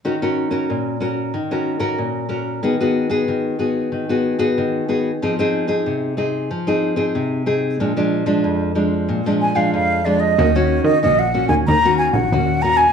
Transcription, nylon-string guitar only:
\new Staff \with { instrumentName = "Nylon-string guitar" } { \time 4/4 \key ees \minor \tempo 4 = 93 << { <des' ges' bes'>16 <des' ges' bes'>8 <des' ges' bes'>8. <des' ges' bes'>8 r16 <des' ges' bes'>8 <des' ges' bes'>8. <des' ges' bes'>8 | <ces' ges' aes'>16 <ces' ges' aes'>8 <ces' ges' aes'>8. <ces' ges' aes'>8. <ces' ges' aes'>8 <ces' ges' aes'>8. <ces' ges' aes'>16 r16 | <c' ees' aes'>16 <c' ees' aes'>8 <c' ees' aes'>8. <c' ees' aes'>8 r16 <c' ees' aes'>8 <c' ees' aes'>8. <c' ees' aes'>8 | <f aes d'>16 <f aes d'>8 <f aes d'>8. <f aes d'>8. <f aes d'>8 <f aes d'>8. <f aes d'>8 |
<bes des' ges'>16 <bes des' ges'>8. <bes des' ges'>16 r16 <bes des' ges'>8 r16 <bes des' ges'>8. <bes des' ges'>8 <bes des' ges'>16 r16 | } \\ { ees4 bes,4 ees4 bes,4 | ees4 ees4 ees4 ees4 | f4 c4 f4 c4 | bes,4 f,4 bes,4 f,4 |
ees4 bes,4 ees4 bes,4 | } >> }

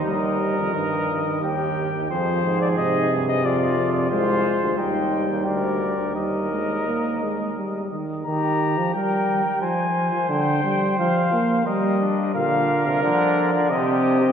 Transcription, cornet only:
\new Staff \with { instrumentName = "Cornet" } { \time 3/4 \key ees \major \tempo 4 = 88 ees''4 ees''4 g''4 | c''8. d''16 ees''8. ees''16 d''8. d''16 | c''4 g''4 d''4 | ees''2~ ees''8 r8 |
bes''4 g''4 aes''4 | g''4 f''4 ees''4 | f''4 d''4 ees''4 | }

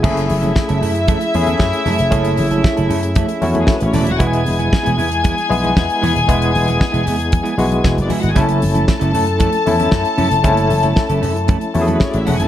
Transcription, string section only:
\new Staff \with { instrumentName = "String section" } { \time 4/4 \key fis \minor \tempo 4 = 115 <e' e''>1~ | <e' e''>2~ \tuplet 3/2 { <e' e''>4 r16 <gis gis'>16 <a a'>16 <b b'>16 <cis' cis''>16 <d' d''>16 <e' e''>16 <fis' fis''>16 } | <gis' gis''>1~ | <gis' gis''>2.~ \tuplet 3/2 { <gis' gis''>16 r16 <d' d''>16 <e' e''>16 <fis' fis''>16 <gis' gis''>16 } |
<a' a''>1~ | <a' a''>2~ \tuplet 3/2 { <a' a''>4 r16 <b b'>16 <cis' cis''>16 <d' d''>16 <e' e''>16 <fis' fis''>16 <gis' gis''>16 <a' a''>16 } | }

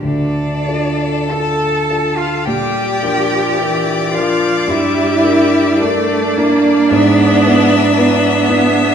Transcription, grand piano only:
\new Staff \with { instrumentName = "Grand piano" } { \time 4/4 \key d \minor \tempo 4 = 54 d,8 <d' f' a'>8 <d' f' a'>8 <d' f' a'>8 bes,8 <d' f' bes'>8 <d' f' bes'>8 <d' f' bes'>8 | g,8 <d' e' bes'>8 <d' e' bes'>8 <d' e' bes'>8 gis,8 <b e' b'>8 <b e' b'>8 <b e' b'>8 | }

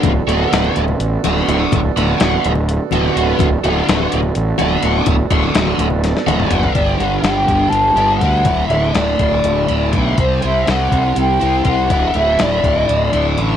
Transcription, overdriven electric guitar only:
\new Staff \with { instrumentName = "Overdriven electric guitar" } { \time 7/8 \key d \mixolydian \tempo 4 = 124 <d a b fis'>8 <d a b fis'>8 <d a b fis'>8 r4 <d a b fis'>8 <d a b fis'>8 | r8 <d a b fis'>8 <d a b fis'>8 r4 <d a b fis'>8 <d a b fis'>8 | r8 <d a b fis'>8 <d a b fis'>8 r4 <d a b fis'>8 <d a b fis'>8 | r8 <d a b fis'>8 <d a b fis'>8 r4 <d a b fis'>8 <d a b fis'>8 |
<g, d g b d' g'>8 <g b d' g'>8 <g, d g b d' g'>4. <g b d' g'>8 <g b d' g'>8 | <d, a, d a e'>8 <d a e'>8 <d, a, d a e'>4. <d a e'>8 <a, d a e'>8 | <c g c' e' g' c''>8 <c' e' g' c''>8 <c g c' e' g' c''>4. <c' e' g' c''>8 <c' e' g' c''>8 | <d, a, d a e'>8 <d a e'>8 <d, a, d a e'>4. <d a e'>8 <a, d a e'>8 | }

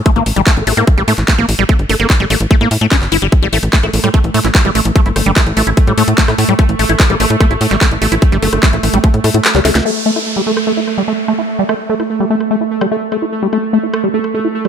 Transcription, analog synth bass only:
\new Staff \with { instrumentName = "Analog synth bass" } { \clef bass \time 4/4 \tempo 4 = 147 r16 a,,16 a,,16 a,,16 r16 a,,16 a,,16 a,16 r16 a,,16 a,16 a,,16 r16 a,,16 a,,16 a,,16 | r16 g,,16 g,,16 g,,16 r16 a,,16 a,,16 a,,16 r16 a,16 a,16 a,16 r16 g,,16 g,,16 g,,16 | r16 a,,16 a,,16 a,,16 r16 a,,16 a,,16 a,16 r16 a,,16 a,16 a,,16 r16 a,,16 a,,16 a,,16 | r16 g,,16 g,,16 g,,16 r16 a,,16 a,,16 a,,16 r16 a,16 a,16 a,16 r16 a,16 a,16 a,16 |
r16 a,,16 a,,16 a,,16 r16 a,,16 a,,16 a,16 r16 a,,16 a,16 a,,16 r16 a,,16 a,,16 a,,16 | r16 g,,16 g,,16 g,,16 r16 a,,16 a,,16 a,,16 r16 a,16 a,16 a,16 r16 cis,16 cis,16 cis,16 | r1 | r1 |
r1 | }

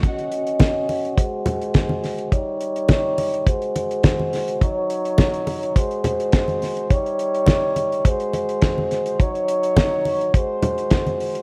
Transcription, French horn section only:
\new Staff \with { instrumentName = "French horn section" } { \time 4/4 \key ees \dorian \tempo 4 = 105 << { <des' ees''>2 <aes c''>2 | <g des''>2 <aes c''>2 | <ges des''>2 <aes c''>2 | <g des''>2 <aes c''>2 |
<ges des''>2 <aes c''>2 | } \\ { ges'1 | ees'2 ges'2 | ees'2 ges'2 | ees'2 ges'2 |
ees'2 ges'2 | } >> }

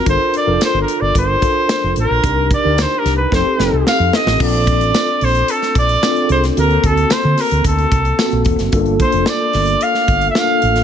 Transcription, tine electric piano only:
\new Staff \with { instrumentName = "Tine electric piano" } { \time 4/4 \key bes \major \tempo 4 = 111 <d' f' a' bes'>8 r16 <d' f' a' bes'>4~ <d' f' a' bes'>16 r8 <d' f' a' bes' c''>4~ <d' f' a' bes' c''>16 r16 | <d' ees' g' bes'>8 r16 <d' ees' g' bes'>4~ <d' ees' g' bes'>16 <c' ees' g' a'>8 <c' ees' g' a'>4~ <c' ees' g' a'>16 r16 | <c' d' f' a'>4. r4. <c' d' f' aes' a'>8. r16 | <bes c' fis' a'>4. r4. <bes c' fis' a'>8. r16 |
<bes d' f' a'>4. r4. <bes d' f' a'>8. r16 | }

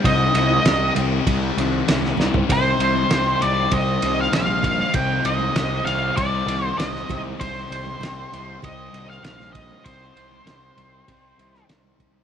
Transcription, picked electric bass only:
\new Staff \with { instrumentName = "Picked electric bass" } { \clef bass \time 4/4 \key c \minor \tempo 4 = 98 c,8 c,8 c,8 c,8 c,8 c,8 c,8 c,8 | c,8 c,8 c,8 c,8 c,8 c,8 bes,,4 | c,8 c,8 c,8 c,8 c,8 c,8 c,8 c,8 | c,8 c,8 c,8 c,8 c,8 c,8 bes,,4 |
c,8 c,8 c,8 c,8 c,8 c,8 c,8 c,8 | }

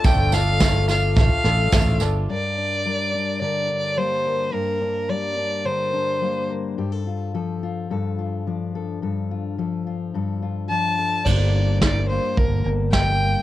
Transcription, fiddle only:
\new Staff \with { instrumentName = "Fiddle" } { \time 4/4 \key g \minor \tempo 4 = 107 g''8 f''4 f''8 f''4. r8 | d''2 d''4 c''4 | bes'4 d''4 c''4. r8 | r1 |
r2. a''4 | d''4 d''8 c''8 bes'8 r8 g''4 | }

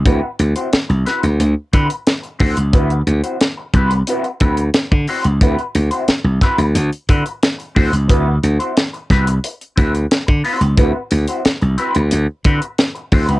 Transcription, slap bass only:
\new Staff \with { instrumentName = "Slap bass" } { \clef bass \time 4/4 \key d \mixolydian \tempo 4 = 90 d,16 r16 d,16 r8 c,16 r16 d,16 d,16 r16 d16 r8. d,16 cis,16 | d,8 d,16 r8. c,8 r8 d,8 r16 d16 r16 cis,16 | d,16 r16 d,16 r8 c,16 r16 d,16 d,16 r16 d16 r8. d,16 cis,16 | d,8 d,16 r8. c,8 r8 d,8 r16 d16 r16 cis,16 |
d,16 r16 d,16 r8 c,16 r16 d,16 d,16 r16 d16 r8. d,16 cis,16 | }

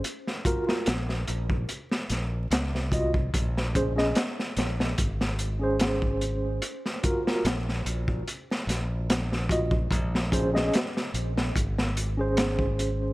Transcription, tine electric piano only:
\new Staff \with { instrumentName = "Tine electric piano" } { \time 4/4 \key bes \minor \tempo 4 = 73 r8 <f' ges' bes'>16 <f' ges' bes'>16 r2 r8 <f' ges' ees''>16 r16 | r8 <des' aes' c''>16 <des' aes' ees''>16 r4. r16 <des' aes' c''>4~ <des' aes' c''>16 | r8 <f' ges' bes'>16 <f' ges' bes'>16 r2 r8 <f' ges' ees''>16 r16 | r8 <des' aes' c''>16 <des' aes' ees''>16 r4. r16 <des' aes' c''>4~ <des' aes' c''>16 | }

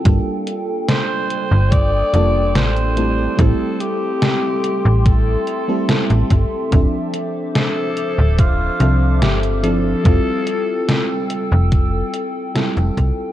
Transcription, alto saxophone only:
\new Staff \with { instrumentName = "Alto saxophone" } { \time 4/4 \key f \major \tempo 4 = 72 r4 c''4 d''4 c''4 | a'8 g'4. a'4. r8 | r4 a'4 f'4 g'8 a'8~ | a'4. r2 r8 | }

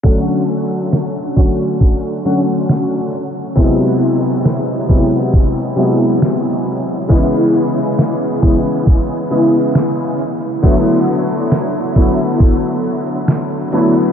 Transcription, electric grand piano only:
\new Staff \with { instrumentName = "Electric grand piano" } { \clef bass \time 4/4 \key d \lydian \tempo 4 = 68 <d fis a cis' fis'>4. <d fis a cis' fis'>4 <d fis a cis' fis'>4 r8 | <bis, fis gis b e'>4. <bis, fis gis b e'>4 <bis, fis gis b e'>4. | <cis e gis b e'>4. <cis e gis b e'>4 <cis e gis b e'>4 r8 | <d fis a b e'>4. <d fis a b e'>4 r4 <d fis a b e'>8 | }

